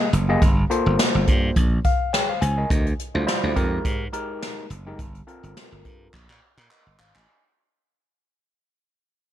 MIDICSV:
0, 0, Header, 1, 4, 480
1, 0, Start_track
1, 0, Tempo, 571429
1, 351, Time_signature, 4, 2, 24, 8
1, 7834, End_track
2, 0, Start_track
2, 0, Title_t, "Tine electric piano"
2, 0, Program_c, 0, 4
2, 242, Note_on_c, 0, 58, 92
2, 244, Note_on_c, 0, 67, 81
2, 248, Note_on_c, 0, 68, 83
2, 249, Note_on_c, 0, 75, 104
2, 350, Note_off_c, 0, 58, 0
2, 351, Note_off_c, 0, 67, 0
2, 352, Note_off_c, 0, 68, 0
2, 353, Note_off_c, 0, 75, 0
2, 588, Note_on_c, 0, 58, 90
2, 588, Note_on_c, 0, 65, 82
2, 590, Note_on_c, 0, 69, 78
2, 594, Note_on_c, 0, 72, 103
2, 1292, Note_off_c, 0, 58, 0
2, 1292, Note_off_c, 0, 65, 0
2, 1294, Note_off_c, 0, 69, 0
2, 1295, Note_off_c, 0, 72, 0
2, 1552, Note_on_c, 0, 77, 71
2, 1775, Note_off_c, 0, 77, 0
2, 1790, Note_on_c, 0, 79, 70
2, 1791, Note_on_c, 0, 73, 64
2, 1797, Note_on_c, 0, 68, 57
2, 1916, Note_off_c, 0, 79, 0
2, 1919, Note_off_c, 0, 73, 0
2, 1922, Note_off_c, 0, 68, 0
2, 1924, Note_on_c, 0, 77, 72
2, 1930, Note_on_c, 0, 72, 59
2, 2023, Note_off_c, 0, 77, 0
2, 2028, Note_on_c, 0, 80, 72
2, 2156, Note_off_c, 0, 72, 0
2, 2165, Note_on_c, 0, 75, 66
2, 2170, Note_on_c, 0, 70, 56
2, 2253, Note_off_c, 0, 80, 0
2, 2393, Note_off_c, 0, 75, 0
2, 2396, Note_off_c, 0, 70, 0
2, 2641, Note_on_c, 0, 55, 78
2, 2643, Note_on_c, 0, 64, 72
2, 2647, Note_on_c, 0, 65, 76
2, 2648, Note_on_c, 0, 72, 89
2, 2721, Note_off_c, 0, 55, 0
2, 2721, Note_off_c, 0, 64, 0
2, 2723, Note_off_c, 0, 65, 0
2, 2724, Note_off_c, 0, 72, 0
2, 2743, Note_on_c, 0, 55, 88
2, 2744, Note_on_c, 0, 64, 89
2, 2746, Note_on_c, 0, 65, 92
2, 2749, Note_on_c, 0, 72, 99
2, 2986, Note_on_c, 0, 56, 84
2, 2986, Note_on_c, 0, 63, 81
2, 2987, Note_off_c, 0, 55, 0
2, 2988, Note_off_c, 0, 64, 0
2, 2988, Note_on_c, 0, 67, 84
2, 2989, Note_off_c, 0, 65, 0
2, 2990, Note_off_c, 0, 72, 0
2, 2991, Note_on_c, 0, 70, 109
2, 3384, Note_off_c, 0, 56, 0
2, 3384, Note_off_c, 0, 63, 0
2, 3385, Note_off_c, 0, 67, 0
2, 3387, Note_off_c, 0, 70, 0
2, 3463, Note_on_c, 0, 56, 98
2, 3466, Note_on_c, 0, 63, 92
2, 3468, Note_on_c, 0, 67, 89
2, 3470, Note_on_c, 0, 70, 115
2, 3910, Note_off_c, 0, 56, 0
2, 3911, Note_off_c, 0, 63, 0
2, 3912, Note_off_c, 0, 67, 0
2, 3914, Note_off_c, 0, 70, 0
2, 4084, Note_on_c, 0, 56, 92
2, 4088, Note_on_c, 0, 63, 86
2, 4090, Note_on_c, 0, 67, 85
2, 4092, Note_on_c, 0, 70, 98
2, 4190, Note_off_c, 0, 56, 0
2, 4192, Note_off_c, 0, 63, 0
2, 4194, Note_off_c, 0, 67, 0
2, 4195, Note_off_c, 0, 70, 0
2, 4426, Note_on_c, 0, 69, 86
2, 4428, Note_on_c, 0, 60, 85
2, 4430, Note_on_c, 0, 65, 85
2, 4432, Note_on_c, 0, 70, 101
2, 5132, Note_off_c, 0, 69, 0
2, 5133, Note_off_c, 0, 60, 0
2, 5133, Note_off_c, 0, 65, 0
2, 5135, Note_off_c, 0, 70, 0
2, 5632, Note_on_c, 0, 75, 66
2, 5636, Note_on_c, 0, 70, 55
2, 5860, Note_off_c, 0, 75, 0
2, 5862, Note_off_c, 0, 70, 0
2, 5874, Note_on_c, 0, 77, 73
2, 5882, Note_on_c, 0, 72, 63
2, 6001, Note_off_c, 0, 77, 0
2, 6004, Note_off_c, 0, 72, 0
2, 6006, Note_on_c, 0, 80, 65
2, 6013, Note_on_c, 0, 75, 60
2, 6234, Note_off_c, 0, 80, 0
2, 6237, Note_off_c, 0, 75, 0
2, 7834, End_track
3, 0, Start_track
3, 0, Title_t, "Slap bass"
3, 0, Program_c, 1, 36
3, 109, Note_on_c, 1, 30, 101
3, 295, Note_off_c, 1, 30, 0
3, 351, Note_on_c, 1, 31, 106
3, 536, Note_off_c, 1, 31, 0
3, 725, Note_on_c, 1, 31, 96
3, 807, Note_off_c, 1, 31, 0
3, 965, Note_on_c, 1, 31, 102
3, 1047, Note_off_c, 1, 31, 0
3, 1074, Note_on_c, 1, 43, 104
3, 1258, Note_off_c, 1, 43, 0
3, 1313, Note_on_c, 1, 34, 98
3, 1497, Note_off_c, 1, 34, 0
3, 2030, Note_on_c, 1, 37, 89
3, 2216, Note_off_c, 1, 37, 0
3, 2272, Note_on_c, 1, 38, 104
3, 2457, Note_off_c, 1, 38, 0
3, 2645, Note_on_c, 1, 38, 101
3, 2727, Note_off_c, 1, 38, 0
3, 2885, Note_on_c, 1, 38, 87
3, 2967, Note_off_c, 1, 38, 0
3, 2994, Note_on_c, 1, 41, 104
3, 3178, Note_off_c, 1, 41, 0
3, 3233, Note_on_c, 1, 44, 94
3, 3417, Note_off_c, 1, 44, 0
3, 3950, Note_on_c, 1, 30, 98
3, 4135, Note_off_c, 1, 30, 0
3, 4192, Note_on_c, 1, 31, 100
3, 4377, Note_off_c, 1, 31, 0
3, 4564, Note_on_c, 1, 31, 91
3, 4646, Note_off_c, 1, 31, 0
3, 4806, Note_on_c, 1, 31, 86
3, 4887, Note_off_c, 1, 31, 0
3, 4916, Note_on_c, 1, 43, 98
3, 5099, Note_off_c, 1, 43, 0
3, 5155, Note_on_c, 1, 34, 92
3, 5257, Note_off_c, 1, 34, 0
3, 5284, Note_on_c, 1, 46, 96
3, 5366, Note_off_c, 1, 46, 0
3, 5523, Note_on_c, 1, 46, 99
3, 5605, Note_off_c, 1, 46, 0
3, 5767, Note_on_c, 1, 31, 91
3, 5848, Note_off_c, 1, 31, 0
3, 5871, Note_on_c, 1, 32, 87
3, 5975, Note_off_c, 1, 32, 0
3, 6007, Note_on_c, 1, 33, 82
3, 6088, Note_off_c, 1, 33, 0
3, 7834, End_track
4, 0, Start_track
4, 0, Title_t, "Drums"
4, 109, Note_on_c, 9, 42, 77
4, 193, Note_off_c, 9, 42, 0
4, 350, Note_on_c, 9, 42, 102
4, 352, Note_on_c, 9, 36, 117
4, 434, Note_off_c, 9, 42, 0
4, 436, Note_off_c, 9, 36, 0
4, 595, Note_on_c, 9, 42, 69
4, 679, Note_off_c, 9, 42, 0
4, 831, Note_on_c, 9, 42, 99
4, 834, Note_on_c, 9, 38, 100
4, 915, Note_off_c, 9, 42, 0
4, 918, Note_off_c, 9, 38, 0
4, 1069, Note_on_c, 9, 42, 66
4, 1074, Note_on_c, 9, 36, 94
4, 1153, Note_off_c, 9, 42, 0
4, 1158, Note_off_c, 9, 36, 0
4, 1311, Note_on_c, 9, 42, 93
4, 1313, Note_on_c, 9, 36, 103
4, 1395, Note_off_c, 9, 42, 0
4, 1397, Note_off_c, 9, 36, 0
4, 1548, Note_on_c, 9, 42, 73
4, 1552, Note_on_c, 9, 36, 82
4, 1632, Note_off_c, 9, 42, 0
4, 1636, Note_off_c, 9, 36, 0
4, 1795, Note_on_c, 9, 42, 92
4, 1797, Note_on_c, 9, 38, 107
4, 1879, Note_off_c, 9, 42, 0
4, 1881, Note_off_c, 9, 38, 0
4, 2031, Note_on_c, 9, 42, 74
4, 2115, Note_off_c, 9, 42, 0
4, 2272, Note_on_c, 9, 36, 122
4, 2272, Note_on_c, 9, 42, 97
4, 2356, Note_off_c, 9, 36, 0
4, 2356, Note_off_c, 9, 42, 0
4, 2406, Note_on_c, 9, 42, 54
4, 2490, Note_off_c, 9, 42, 0
4, 2515, Note_on_c, 9, 42, 70
4, 2599, Note_off_c, 9, 42, 0
4, 2755, Note_on_c, 9, 42, 89
4, 2758, Note_on_c, 9, 38, 100
4, 2839, Note_off_c, 9, 42, 0
4, 2842, Note_off_c, 9, 38, 0
4, 2992, Note_on_c, 9, 42, 66
4, 2994, Note_on_c, 9, 36, 88
4, 3076, Note_off_c, 9, 42, 0
4, 3078, Note_off_c, 9, 36, 0
4, 3233, Note_on_c, 9, 36, 112
4, 3233, Note_on_c, 9, 42, 96
4, 3317, Note_off_c, 9, 36, 0
4, 3317, Note_off_c, 9, 42, 0
4, 3471, Note_on_c, 9, 42, 75
4, 3555, Note_off_c, 9, 42, 0
4, 3715, Note_on_c, 9, 42, 82
4, 3717, Note_on_c, 9, 38, 105
4, 3799, Note_off_c, 9, 42, 0
4, 3801, Note_off_c, 9, 38, 0
4, 3950, Note_on_c, 9, 42, 82
4, 4034, Note_off_c, 9, 42, 0
4, 4190, Note_on_c, 9, 42, 95
4, 4192, Note_on_c, 9, 36, 127
4, 4274, Note_off_c, 9, 42, 0
4, 4276, Note_off_c, 9, 36, 0
4, 4324, Note_on_c, 9, 42, 57
4, 4408, Note_off_c, 9, 42, 0
4, 4436, Note_on_c, 9, 42, 65
4, 4520, Note_off_c, 9, 42, 0
4, 4566, Note_on_c, 9, 42, 65
4, 4650, Note_off_c, 9, 42, 0
4, 4675, Note_on_c, 9, 42, 98
4, 4678, Note_on_c, 9, 38, 107
4, 4759, Note_off_c, 9, 42, 0
4, 4762, Note_off_c, 9, 38, 0
4, 4911, Note_on_c, 9, 42, 66
4, 4915, Note_on_c, 9, 36, 87
4, 4995, Note_off_c, 9, 42, 0
4, 4999, Note_off_c, 9, 36, 0
4, 5155, Note_on_c, 9, 36, 99
4, 5157, Note_on_c, 9, 39, 56
4, 5239, Note_off_c, 9, 36, 0
4, 5241, Note_off_c, 9, 39, 0
4, 5293, Note_on_c, 9, 39, 56
4, 5377, Note_off_c, 9, 39, 0
4, 5533, Note_on_c, 9, 39, 67
4, 5617, Note_off_c, 9, 39, 0
4, 5636, Note_on_c, 9, 39, 88
4, 5720, Note_off_c, 9, 39, 0
4, 5876, Note_on_c, 9, 39, 102
4, 5960, Note_off_c, 9, 39, 0
4, 6012, Note_on_c, 9, 39, 84
4, 6096, Note_off_c, 9, 39, 0
4, 7834, End_track
0, 0, End_of_file